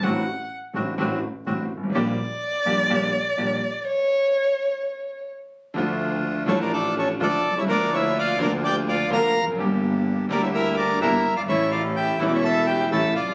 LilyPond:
<<
  \new Staff \with { instrumentName = "Bandoneon" } { \time 4/4 \key d \minor \tempo 4 = 126 << { r1 | r1 | r1 | r4. cis''16 d''16 d''8 cis''8 d''8. e''16 |
d''8 e''8 f''8 d''8 g''8 f''8 bes''8. r16 | r4. d''16 e''16 e''8 d''8 e''8. f''16 | e''8 f''8 g''8 e''32 d''32 e''16 a''8 g''8 a''8 f''8 | } \\ { r1 | r1 | r1 | r4. a'16 bes'16 a'8 a'8 a'8. cis''16 |
bes'8 cis''8 d''8 bes'8 d''8 d''8 f''8. r16 | r4. bes'16 cis''16 bes'8 bes'8 bes'8. d''16 | cis''8 d''8 e''8 cis''16 cis''16 e''8 e''8 e''8 d''8 | } >> }
  \new Staff \with { instrumentName = "Violin" } { \time 4/4 \key d \minor fis''4 r2. | d''1 | cis''2. r4 | r4. cis'16 d'16 d'8 cis'8 d'8. e'16 |
d'8 e'8 f'8 d'8 g'8 f'8 bes'8. r16 | r4. d'16 e'16 e'8 d'8 e'8. f'16 | e'8 f'8 g'8 e'32 d'32 e'16 a'8 g'8 a'8 f'8 | }
  \new Staff \with { instrumentName = "Bandoneon" } { \time 4/4 \key d \minor <c' d' fis'>8 r4 <c' d' fis'>8 <c' d' fis'>8 r8 <c' d' fis'>8 r8 | <bes d' g'>8 r4 <bes d' g'>8 <bes d' g'>8 r8 <bes d' g'>8 r8 | r1 | <a d' f'>4. <a d' f'>4. <a d' f'>8 r8 |
<bes d' f'>4. <bes d' f'>4. <bes d' f'>8 r8 | <bes d' g'>4. <bes d' g'>4. <bes d' g'>8 r8 | <cis' e' a'>4. <cis' e' a'>4. <cis' e' a'>8 r8 | }
  \new Staff \with { instrumentName = "Grand piano" } { \clef bass \time 4/4 \key d \minor <a,, a, d a c' fis'>8 r4 <a,, a, d a c' fis'>8 <a,, a, d a c' fis'>8 r8 <a,, a, d a c' fis'>8 r32 g,,32 gis,,32 a,,32 | <bes,, bes, d g bes g'>8 r4 <bes,, bes, d g bes g'>8 <bes,, bes, d g bes g'>8 r8 <bes,, bes, d g bes g'>8 r8 | r1 | <d, d f a f'>4. <a,, a, d f a f'>4. <d, d f a f'>8 r32 b,,32 c,32 cis,32 |
<d, d f bes f'>4. <d, d f bes f'>4. <d, d f bes f'>8 r32 e,32 f,32 fis,32 | <g,, g, d g bes g'>4. <d, d g bes g'>4. <g,, g, d g bes g'>8 r32 fis,,32 g,,32 gis,,32 | <a,, a, cis e a e'>4. <e,, e, cis e a e'>4. <a,, a, cis e a e'>8 r32 b,,32 c,32 r32 | }
  \new Staff \with { instrumentName = "Double bass" } { \clef bass \time 4/4 \key d \minor a,,8 r4 a,,8 a,,8 r8 a,,8 gis,,8 | bes,,8 r4 bes,,8 bes,,8 r8 bes,,8 r8 | r1 | d,4. a,,4. d,8 c,8 |
d,4. d,4. d,8 f,,8 | g,,4. d,4. g,,8 g,,8 | a,,4. e,,4. a,,8 c,8 | }
>>